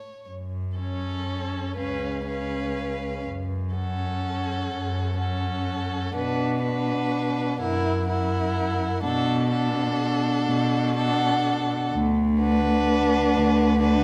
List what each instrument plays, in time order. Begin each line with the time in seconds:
Already playing: violin C#5
0.29 cello F#2
0.78 viola C#4, violin A4 C#5
1.76 cello C#2, viola C#4, violin B4 F5
2.27 viola C#4, violin B4 F5
3.26 cello F#2
3.74 viola C#4, violin A4 F#5
4.70 cello F#2
5.17 viola C#4, violin A4 F#5
6.14 cello B2, viola D4, violin B4 F#5
6.62 viola D4, violin B4 F#5
7.59 cello F#2, viola E4, violin A#4 F#5
8.06 viola E4, violin A#4 F#5
9.03 cello B2, viola D4, violin A4 F#5
9.52 viola D4, violin A4 F#5
10.49 cello B2
10.96 viola D4, violin A4 F#5
11.92 cello D2
12.39 viola D4, violin B4 F#5
13.34 cello D2
13.80 viola D4, violin B4 F#5